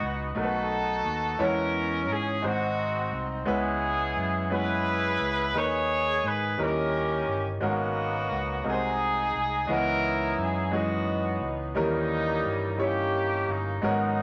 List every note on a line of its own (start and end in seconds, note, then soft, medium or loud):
0.00 0.34 C#2 medium
0.00 0.32 G#2 medium
0.00 0.38 G#3 medium
0.00 0.33 B3 medium
0.00 0.36 B3 medium
0.00 0.33 D#4 medium
0.00 0.36 D#4 medium
0.00 0.34 F#4 loud
0.00 0.36 F#4 medium
0.00 0.38 B4 medium
0.35 1.01 B1 medium
0.35 1.36 B2 medium
0.35 1.07 A3 medium
0.35 1.07 B3 medium
0.35 1.07 D#4 medium
0.35 1.37 D#4 medium
0.35 1.07 F#4 medium
0.35 1.37 F#4 medium
0.35 0.43 A#4 medium
0.40 1.42 A4 loud
0.40 1.11 B4 medium
1.04 1.37 D#2 medium
1.39 2.09 E2 loud
1.39 2.39 E3 medium
1.39 2.10 G#3 medium
1.39 2.11 B3 medium
1.39 2.11 C#4 medium
1.39 2.41 C#4 medium
1.39 2.11 E4 medium
1.39 2.10 A#4 loud
1.39 2.11 C#5 medium
2.09 2.41 G#2 medium
2.09 2.45 G#4 loud
2.42 3.09 G#1 medium
2.42 3.43 G#2 medium
2.42 3.14 G#3 medium
2.42 3.14 C4 medium
2.42 3.44 C4 medium
2.42 3.14 D#4 medium
2.42 3.44 D#4 medium
2.42 3.15 F#4 medium
2.42 3.23 F#4 loud
2.42 3.15 C5 medium
3.12 3.44 C2 medium
3.46 4.13 C#2 loud
3.46 4.47 C#3 medium
3.46 4.18 G#3 medium
3.46 4.18 B3 medium
3.46 4.48 B3 medium
3.46 4.18 C#4 medium
3.46 4.18 E4 medium
3.46 4.19 B4 medium
3.50 4.48 E4 medium
3.50 4.49 G#4 loud
4.17 5.16 F#2 medium
4.50 5.22 G#3 medium
4.50 5.22 B3 medium
4.50 5.22 C#4 medium
4.50 5.22 E4 medium
4.50 5.52 E4 medium
4.50 5.52 G#4 medium
4.50 5.23 B4 medium
4.50 5.56 B4 loud
5.20 5.52 C#2 medium
5.54 6.20 D#2 medium
5.54 6.55 D#3 medium
5.54 6.26 D#4 medium
5.54 6.26 G#4 medium
5.54 6.55 G#4 medium
5.54 5.62 A#4 medium
5.54 6.25 C#5 loud
5.63 6.30 B4 medium
6.24 6.56 G#2 loud
6.24 6.60 B4 loud
6.57 7.23 D#2 medium
6.57 7.58 D#3 medium
6.57 7.29 G3 medium
6.57 7.29 C#4 medium
6.57 7.29 D#4 medium
6.57 7.30 E4 medium
6.57 7.30 A#4 medium
6.62 7.47 C#4 medium
6.62 7.47 G4 medium
6.62 7.38 A#4 loud
7.28 7.59 G1 medium
7.61 8.27 G#1 loud
7.61 8.61 G#2 medium
7.61 8.33 B2 medium
7.61 8.32 G#3 medium
7.61 8.63 A#3 medium
7.61 8.62 B3 medium
7.61 8.33 C#4 medium
7.61 8.33 F#4 medium
7.61 8.62 F#4 loud
7.61 8.33 A#4 medium
8.31 8.63 C#2 medium
8.64 9.31 C2 medium
8.64 9.65 C3 medium
8.64 9.36 G#3 medium
8.64 9.36 C4 medium
8.64 9.36 D#4 medium
8.64 9.66 D#4 medium
8.64 9.37 F#4 medium
8.64 9.70 G#4 loud
8.64 8.72 A#4 medium
8.72 9.40 C5 medium
9.35 9.67 C2 loud
9.67 10.34 C#2 loud
9.67 10.68 C#3 medium
9.67 10.40 E3 medium
9.67 10.39 G#3 medium
9.67 10.40 B3 medium
9.67 10.40 C#4 medium
9.67 10.40 D#5 medium
9.71 10.70 D#4 medium
9.71 10.70 E4 medium
9.71 10.35 A#4 loud
10.37 11.37 F#2 medium
10.37 10.73 G#4 medium
10.72 11.43 E3 medium
10.72 11.43 G#3 medium
10.72 11.73 B3 medium
10.72 11.43 C#4 medium
10.72 11.43 D#4 medium
10.72 11.72 D#4 medium
10.72 11.47 F#4 loud
10.72 11.44 G#4 medium
11.41 11.73 C#2 medium
11.75 12.41 D#2 loud
11.75 12.75 D#3 medium
11.75 12.47 E3 medium
11.75 12.46 G3 medium
11.75 12.76 G3 medium
11.75 12.76 A#3 medium
11.75 12.46 C#4 medium
11.75 12.46 D#4 medium
11.75 12.76 D#4 loud
11.75 12.47 A#4 medium
12.45 13.44 G2 medium
12.77 13.49 G3 medium
12.77 13.79 A#3 medium
12.77 13.49 C#4 medium
12.77 13.79 C#4 medium
12.77 13.50 D#4 medium
12.77 13.50 E4 medium
12.77 13.48 G4 medium
12.77 13.50 C#5 medium
13.48 13.80 G1 medium
13.48 13.83 D#4 medium
13.82 14.22 G#1 loud
13.82 14.22 G#2 medium
13.82 14.22 F#3 medium
13.82 14.22 G#3 medium
13.82 14.22 B3 medium
13.82 14.22 C#4 medium
13.82 14.22 D#4 medium
13.82 14.22 F#4 medium
13.82 14.22 A#4 medium